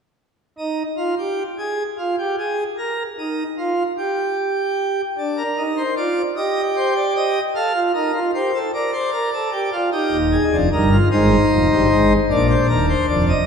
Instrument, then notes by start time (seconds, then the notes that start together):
pipe organ
0.58 D#4
0.97 F4
1.18 G4
1.58 G#4
1.99 F4
2.19 G4
2.39 G#4
2.78 A#4
3.19 D#4
3.58 F4
3.98 G4
5.18 D4
5.38 A#4
5.57 D#4
5.77 C5
5.97 F4 D5
6.37 G4 D#5
6.76 C5
6.96 D5
7.16 D#5
7.55 A4 F5
7.75 F4
7.94 D#4 A#4
8.14 F4
8.34 G4 C5
8.54 A4
8.74 A#4 D5
8.93 C5
9.13 A#4
9.33 A4
9.53 G4
9.73 F4
9.92 D#4 G4
10.12 D#1 D#2
10.32 G#4
10.52 F1 F2 D4
10.73 G1 G2 D#4 A#4
10.92 F4
11.11 G#1 G#2 D#4 C5
11.50 F1 F2
11.70 G1 G2
11.90 G#1 G#2
12.30 A#1 A#2 D4 D5
12.50 C5
12.69 D#1 D#2 A#4
12.89 C5
13.09 F1 F2 D5
13.29 D#5